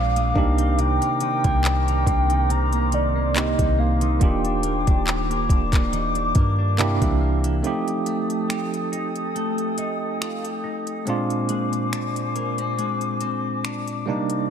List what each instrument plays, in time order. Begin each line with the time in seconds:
Already playing: 808-style bass A#1, clean electric guitar A#2 G#3 C4 D4, tine electric piano G#3 C4 D4 F4, flute section C5 G#5 D6, soft synth lead F5
0.16 clean electric guitar G#3, closed hi-hat
0.34 808-style bass C2, clean electric guitar C3, tine electric piano A#3 D4 D#4 G4, flute section A#4 C5, kick
0.58 clean electric guitar D#3, closed hi-hat
0.78 clean electric guitar C3, soft synth lead G5, closed hi-hat
1.01 clean electric guitar A#3, closed hi-hat
1.20 clean electric guitar D#3, soft synth lead G5, closed hi-hat
1.44 808-style bass C2, clean electric guitar A#3, kick, closed hi-hat
1.64 clean electric guitar D4, clap, closed hi-hat
1.87 clean electric guitar D#3, closed hi-hat
2.07 808-style bass C2, clean electric guitar A#3, kick, closed hi-hat
2.30 clean electric guitar D#3, closed hi-hat
2.50 clean electric guitar C3, soft synth lead A#5, closed hi-hat
2.72 clean electric guitar A#3, closed hi-hat
2.92 clean electric guitar D#3, soft synth lead D5, closed hi-hat
3.16 clean electric guitar A#3
3.35 tine electric piano A#3 C4 D#4 G4, soft synth lead D#5, clap, closed hi-hat
3.59 808-style bass C2, clean electric guitar D#3, kick, closed hi-hat
3.78 clean electric guitar A#3, soft synth lead F5
4.01 clean electric guitar D#3, closed hi-hat
4.20 808-style bass D#1, clean electric guitar D#3, tine electric piano A#3 D4 F4, flute section G4 D6, soft synth lead G5, kick, closed hi-hat
4.24 tine electric piano G4
4.44 clean electric guitar D4, closed hi-hat
4.63 clean electric guitar A#3, closed hi-hat
4.87 808-style bass D#1, clean electric guitar D4, kick, closed hi-hat
5.07 clean electric guitar G4, clap, closed hi-hat
5.30 clean electric guitar A#3, closed hi-hat
5.49 808-style bass D#1, clean electric guitar D4, kick, closed hi-hat
5.73 clean electric guitar A#3, kick, clap, closed hi-hat
5.92 clean electric guitar D#3, closed hi-hat
6.15 clean electric guitar D4, closed hi-hat
6.35 808-style bass G2, clean electric guitar A#3, kick, closed hi-hat
6.58 clean electric guitar D4
6.78 clean electric guitar C3, tine electric piano A#3 D4 E4 G4, flute section A#4 E5, clap, closed hi-hat
7.01 808-style bass C2, clean electric guitar E3, kick, closed hi-hat
7.21 clean electric guitar A#3
7.44 clean electric guitar E3, closed hi-hat
7.63 clean electric guitar F3, tine electric piano A3 C4 D#4 G4, flute section A4 G5 D#6, closed hi-hat
7.88 closed hi-hat
8.06 clean electric guitar A3, closed hi-hat
8.30 closed hi-hat
8.50 clean electric guitar G4, finger snap, closed hi-hat
8.74 closed hi-hat
8.92 clean electric guitar D#4, closed hi-hat
9.15 closed hi-hat
9.35 clean electric guitar A3, closed hi-hat
9.58 closed hi-hat
9.78 clean electric guitar D#4, closed hi-hat
10.21 clean electric guitar F4, finger snap, closed hi-hat
10.44 clean electric guitar G4, closed hi-hat
10.64 clean electric guitar D#4
10.87 closed hi-hat
11.05 clean electric guitar A#2, tine electric piano G#3 C4 D4, flute section C5 G#5 D6, closed hi-hat
11.09 tine electric piano F4
11.30 closed hi-hat
11.49 clean electric guitar G#3, closed hi-hat
11.73 closed hi-hat
11.93 clean electric guitar D4, finger snap, closed hi-hat
12.16 closed hi-hat
12.35 clean electric guitar A#3, closed hi-hat
12.58 clean electric guitar C4, closed hi-hat
12.78 clean electric guitar G#3, closed hi-hat
13.01 closed hi-hat
13.20 clean electric guitar C4, closed hi-hat
13.64 clean electric guitar D4, finger snap, closed hi-hat
13.87 closed hi-hat
14.06 clean electric guitar C3, tine electric piano G3 A#3 D4, flute section A#4 D5 D6
14.10 tine electric piano D#4
14.30 closed hi-hat